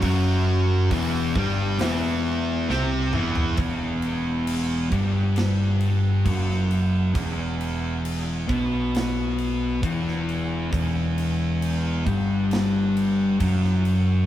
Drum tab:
CC |----------------|x-x-x-x-x-x-x-x-|x-x-x-x-x-x-x-x-|x-x-x-x-x-x-x-x-|
HH |o---o---o-------|----------------|----------------|----------------|
SD |--------o---o---|--------o----o--|--------o----o--|--------o----o--|
T2 |--------------o-|----------------|----------------|----------------|
FT |---------------o|----------------|----------------|----------------|
BD |o---o-o---------|o-----o-----o---|o-----o-----o---|o-----o-----o---|